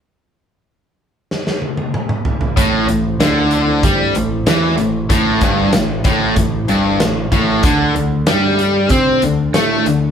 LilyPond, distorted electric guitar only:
\new Staff \with { instrumentName = "Distorted electric guitar" } { \clef bass \time 4/4 \key a \minor \tempo 4 = 95 r1 | a,8 a,8 d4 g8 a,8 e8 a,8 | a,8 g,8 a,8 a,8 a,8 g,8 a,8 a,8 | d8 d8 g4 c'8 d8 a8 d8 | }